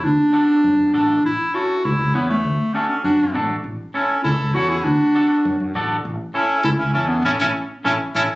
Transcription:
0.04 0.16 D2 medium
0.04 0.94 D4 loud
0.33 0.54 D4 medium
0.33 0.55 F#4 medium
0.33 0.55 A4 medium
0.64 0.76 F#2 loud
0.79 0.91 F#2 medium
0.93 1.18 A1 medium
0.93 1.15 D4 medium
0.93 1.23 D4 medium
0.93 1.15 F#4 medium
0.93 1.15 A4 medium
1.24 1.36 A1 medium
1.24 1.56 E4 loud
1.54 1.75 C#4 medium
1.54 1.75 E4 medium
1.54 1.86 F#4 loud
1.54 1.75 A4 medium
1.85 1.97 C#2 loud
1.85 2.16 E4 loud
1.99 2.11 C#2 medium
2.14 2.39 E2 medium
2.14 2.29 B3 medium
2.14 2.35 C#4 medium
2.14 2.35 E4 medium
2.14 2.36 B4 medium
2.29 2.76 A3 medium
2.45 2.57 D2 loud
2.74 2.88 C#4 medium
2.74 2.96 D4 medium
2.74 2.96 F#4 medium
2.74 2.96 A4 medium
2.89 3.03 C#4 medium
3.04 3.16 F#2 loud
3.04 3.46 D4 medium
3.04 3.47 F#4 medium
3.19 3.31 F#2 medium
3.34 3.58 A1 medium
3.34 3.55 D4 medium
3.34 3.56 F#4 medium
3.34 3.56 A4 medium
3.64 3.76 A1 medium
3.94 4.15 C#4 medium
3.94 4.23 C#4 medium
3.94 4.16 E4 medium
3.94 4.23 E4 medium
3.94 4.16 A4 medium
4.24 4.37 C#2 loud
4.24 4.56 E4 loud
4.24 4.54 A4 medium
4.40 4.52 C#2 medium
4.54 4.79 E2 medium
4.54 4.76 C#4 medium
4.54 4.76 E4 medium
4.54 4.71 F#4 loud
4.54 4.76 F#4 medium
4.54 4.71 A4 medium
4.69 4.86 E4 medium
4.69 4.84 G#4 medium
4.82 4.97 D2 loud
4.82 5.75 D4 medium
4.82 5.74 F#4 medium
5.15 5.36 D4 medium
5.15 5.36 F#4 medium
5.15 5.36 A4 medium
5.45 5.57 F#2 loud
5.60 5.72 F#2 medium
5.75 5.99 A1 medium
5.75 5.96 D4 medium
5.75 5.96 F#4 medium
5.75 5.96 A4 medium
6.05 6.17 A1 medium
6.34 6.56 C#4 medium
6.34 6.63 C#4 medium
6.34 6.63 E4 medium
6.34 6.56 E4 medium
6.34 6.56 A4 medium
6.63 6.77 C#2 loud
6.63 6.71 E4 loud
6.63 6.70 A4 medium
6.78 6.91 C#2 medium
6.78 6.93 C#4 medium
6.78 6.93 E4 medium
6.93 7.19 E2 medium
6.93 7.10 C#4 medium
6.93 7.16 C#4 medium
6.93 7.09 E4 medium
6.93 7.16 E4 medium
6.93 7.16 A4 medium
7.08 7.24 B3 medium
7.08 7.24 D4 medium
7.24 7.36 A1 loud
7.24 7.32 C#4 loud
7.24 7.35 C#4 medium
7.24 7.32 E4 loud
7.24 7.35 E4 medium
7.24 7.35 A4 medium
7.39 7.51 A1 loud
7.39 7.48 C#4 medium
7.39 7.50 C#4 medium
7.39 7.47 E4 medium
7.39 7.50 E4 medium
7.39 7.50 A4 medium
7.85 7.96 A1 medium
7.85 7.95 C#4 medium
7.85 7.93 C#4 medium
7.85 7.94 E4 medium
7.85 7.93 E4 medium
7.85 7.94 A4 medium
8.15 8.26 A1 medium
8.15 8.25 C#4 medium
8.15 8.23 C#4 medium
8.15 8.22 E4 medium
8.15 8.25 E4 medium
8.15 8.25 A4 medium

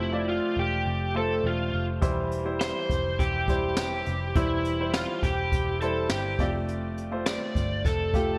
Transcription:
0.00 0.39 F1 medium
0.00 0.52 C3 medium
0.00 2.04 F3 medium
0.00 0.12 A3 medium
0.00 0.25 E4 medium
0.00 0.13 F4 medium
0.00 2.03 G4 medium
0.00 1.16 C5 medium
0.12 0.88 A3 medium
0.12 0.88 F4 medium
0.12 0.88 D5 medium
0.29 0.58 F4 medium
0.57 0.84 E1 medium
0.57 1.17 G4 medium
0.86 1.40 F1 medium
1.14 1.79 A3 medium
1.14 1.79 F4 medium
1.14 1.46 A4 medium
1.14 1.80 C5 medium
1.44 1.71 E1 medium
1.44 1.86 F4 medium
1.73 2.00 F1 medium
2.01 2.71 E1 medium
2.01 2.85 E3 medium
2.01 2.34 G3 medium
2.01 2.34 E4 medium
2.01 2.34 C5 medium
2.01 kick medium
2.01 closed hi-hat medium
2.31 closed hi-hat medium
2.45 3.20 G3 medium
2.45 3.21 E4 medium
2.45 3.21 C5 medium
2.61 3.21 C5 medium
2.61 snare medium
2.61 closed hi-hat medium
2.90 3.17 F1 medium
2.90 kick medium
2.90 closed hi-hat medium
3.19 4.02 E1 medium
3.19 3.76 G4 medium
3.19 kick medium
3.19 closed hi-hat medium
3.48 4.12 G3 medium
3.48 4.13 E4 medium
3.48 4.13 C5 medium
3.48 kick medium
3.48 closed hi-hat medium
3.77 4.37 G4 medium
3.77 snare medium
3.77 closed hi-hat medium
4.06 4.34 F1 medium
4.06 closed hi-hat medium
4.36 5.05 E1 medium
4.36 5.19 E3 medium
4.36 4.68 G3 medium
4.36 4.94 E4 medium
4.36 4.68 E4 medium
4.36 4.68 C5 medium
4.36 kick medium
4.36 closed hi-hat medium
4.65 closed hi-hat medium
4.79 5.54 G3 medium
4.79 5.55 E4 medium
4.79 5.55 C5 medium
4.94 5.24 F4 medium
4.94 snare medium
4.94 closed hi-hat medium
5.23 5.50 E1 medium
5.23 5.81 G4 medium
5.23 kick medium
5.23 closed hi-hat medium
5.52 6.06 E1 loud
5.52 kick medium
5.52 closed hi-hat medium
5.81 6.40 G3 medium
5.81 6.40 E4 medium
5.81 6.10 A4 medium
5.81 6.40 C5 medium
5.81 closed hi-hat medium
6.09 6.37 G1 medium
6.09 6.51 G4 medium
6.09 snare medium
6.09 closed hi-hat medium
6.39 7.37 F1 medium
6.39 7.23 C3 medium
6.39 6.98 A3 medium
6.39 6.98 F4 medium
6.39 6.98 D5 medium
6.39 kick medium
6.39 closed hi-hat medium
6.68 closed hi-hat medium
6.98 closed hi-hat medium
7.12 7.87 A3 medium
7.12 7.87 F4 medium
7.12 7.87 C5 medium
7.26 7.87 D5 medium
7.26 snare medium
7.26 closed hi-hat medium
7.55 7.83 G1 medium
7.55 kick medium
7.55 closed hi-hat medium
7.85 8.38 F1 loud
7.85 8.38 A4 medium
7.85 kick medium
7.85 closed hi-hat medium
8.14 8.38 A3 medium
8.14 8.38 F4 medium
8.14 8.38 G4 medium
8.14 kick medium
8.14 closed hi-hat medium

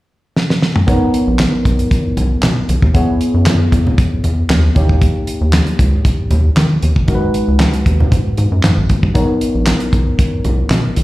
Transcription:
0.36 snare medium
0.50 snare medium
0.62 snare medium
0.76 mid tom medium
0.87 0.98 B1 loud
0.87 2.90 B3 medium
0.87 2.91 D#4 medium
0.87 2.91 A#4 medium
0.87 2.91 C#5 medium
0.87 kick loud
0.87 closed hi-hat medium
1.14 closed hi-hat medium
1.14 muted conga soft
1.27 1.46 A#1 medium
1.39 snare loud
1.39 clap medium
1.39 closed hi-hat medium
1.39 high conga medium
1.65 1.84 B1 medium
1.65 kick medium
1.65 closed hi-hat medium
1.65 muted conga soft
1.79 closed hi-hat medium
1.91 kick loud
1.91 closed hi-hat medium
1.91 muted conga soft
2.17 2.36 B1 medium
2.17 closed hi-hat medium
2.17 muted conga soft
2.17 low conga medium
2.43 2.53 B2 loud
2.43 snare loud
2.43 clap medium
2.43 closed hi-hat medium
2.43 high conga medium
2.69 2.79 B1 medium
2.69 closed hi-hat medium
2.69 high conga medium
2.82 2.91 D#2 medium
2.82 kick medium
2.94 3.05 E2 loud
2.94 4.72 B3 medium
2.94 4.72 E4 medium
2.94 4.72 G#4 medium
2.94 4.73 C#5 medium
2.94 kick loud
2.94 closed hi-hat medium
3.21 closed hi-hat medium
3.34 3.53 F#2 medium
3.46 snare loud
3.46 clap medium
3.46 closed hi-hat medium
3.46 high conga medium
3.72 3.91 E2 medium
3.72 kick medium
3.72 closed hi-hat medium
3.72 muted conga medium
3.87 low conga medium
3.98 kick loud
3.98 closed hi-hat loud
3.98 muted conga soft
4.24 4.43 E2 medium
4.24 closed hi-hat medium
4.24 muted conga soft
4.50 4.69 D#2 loud
4.50 snare loud
4.50 clap medium
4.50 closed hi-hat medium
4.50 high conga medium
4.75 5.04 D#2 medium
4.75 6.78 A#3 medium
4.75 6.78 D#4 medium
4.75 6.79 G4 medium
4.75 6.79 C#5 medium
4.75 kick medium
4.75 closed hi-hat medium
4.75 high conga medium
4.89 kick medium
5.01 kick loud
5.01 closed hi-hat medium
5.27 closed hi-hat medium
5.41 5.60 D#2 medium
5.53 snare loud
5.53 clap medium
5.53 closed hi-hat medium
5.53 high conga medium
5.67 closed hi-hat soft
5.79 5.98 C#2 medium
5.79 kick medium
5.79 closed hi-hat medium
5.79 muted conga soft
6.05 kick loud
6.05 closed hi-hat medium
6.05 muted conga soft
6.31 6.49 D#2 medium
6.31 closed hi-hat medium
6.31 muted conga soft
6.31 low conga medium
6.57 6.67 D#3 loud
6.57 snare loud
6.57 clap medium
6.57 closed hi-hat medium
6.57 high conga medium
6.82 6.93 D#2 medium
6.82 closed hi-hat medium
6.82 high conga medium
6.96 7.05 G1 medium
6.96 kick medium
7.07 7.18 G#1 medium
7.07 9.11 G#3 medium
7.07 9.11 D#4 medium
7.07 9.11 F#4 medium
7.07 7.15 A#4 medium
7.07 kick loud
7.07 closed hi-hat medium
7.15 9.15 B4 medium
7.34 closed hi-hat medium
7.34 muted conga soft
7.48 7.67 C#2 medium
7.60 snare loud
7.60 clap medium
7.60 closed hi-hat medium
7.60 high conga medium
7.73 closed hi-hat medium
7.86 8.05 D#2 medium
7.86 kick medium
7.86 closed hi-hat medium
7.86 muted conga medium
8.00 low conga medium
8.12 8.22 G#2 medium
8.12 kick loud
8.12 closed hi-hat medium
8.12 muted conga soft
8.37 8.48 G#2 medium
8.37 closed hi-hat medium
8.37 muted conga soft
8.52 8.60 F#2 medium
8.63 8.74 G#2 loud
8.63 snare loud
8.63 clap medium
8.63 closed hi-hat medium
8.63 high conga medium
8.77 8.86 G#1 loud
8.89 kick medium
8.89 closed hi-hat medium
8.89 high conga medium
9.03 9.12 A#1 medium
9.03 kick medium
9.14 9.25 B1 loud
9.14 11.04 B3 medium
9.14 11.04 D#4 medium
9.14 11.04 A#4 medium
9.14 11.04 C#5 medium
9.14 kick loud
9.14 closed hi-hat medium
9.41 closed hi-hat medium
9.55 9.74 A#1 medium
9.66 snare loud
9.66 clap medium
9.66 closed hi-hat medium
9.66 high conga medium
9.80 closed hi-hat soft
9.93 10.12 B1 medium
9.93 kick medium
9.93 closed hi-hat medium
9.93 muted conga soft
10.19 kick loud
10.19 closed hi-hat loud
10.19 muted conga soft
10.44 10.64 B1 medium
10.44 closed hi-hat medium
10.44 muted conga soft
10.44 low conga medium
10.70 10.81 B2 loud
10.70 snare loud
10.70 clap medium
10.70 closed hi-hat medium
10.70 high conga medium
10.96 11.04 B1 medium
10.96 closed hi-hat medium
10.96 high conga medium

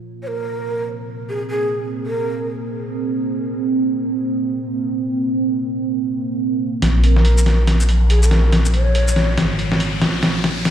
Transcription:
0.00 6.81 A#3 medium
0.00 6.85 C4 medium
0.23 0.28 C#5 medium
0.27 0.83 A#4 medium
1.29 1.39 G#4 medium
1.50 1.85 G#4 medium
2.06 2.48 A#4 medium
6.82 8.51 A#1 loud
6.82 10.71 A#3 medium
6.82 10.71 F4 medium
6.82 snare soft
6.82 closed hi-hat medium
6.82 riser medium
7.04 7.64 A#4 medium
7.04 closed hi-hat medium
7.16 snare soft
7.25 closed hi-hat medium
7.38 shaker medium
7.46 snare soft
7.46 closed hi-hat medium
7.67 snare medium
7.67 closed hi-hat medium
7.80 shaker soft
7.89 closed hi-hat medium
8.10 8.20 G#4 medium
8.10 closed hi-hat medium
8.23 8.53 A#4 medium
8.23 shaker medium
8.31 snare medium
8.31 closed hi-hat medium
8.52 9.37 A#1 loud
8.52 snare medium
8.52 closed hi-hat medium
8.65 shaker medium
8.74 9.34 C#5 medium
8.74 closed hi-hat medium
8.95 closed hi-hat medium
9.08 shaker medium
9.16 snare medium
9.16 closed hi-hat soft
9.37 10.00 G#1 medium
9.37 snare medium
9.37 closed hi-hat medium
9.59 closed hi-hat medium
9.72 snare medium
9.80 closed hi-hat medium
10.01 10.21 A#1 medium
10.01 snare medium
10.01 closed hi-hat medium
10.23 10.71 A#1 loud
10.23 snare medium
10.23 closed hi-hat medium
10.44 snare medium
10.44 closed hi-hat soft
10.65 snare medium
10.65 closed hi-hat medium

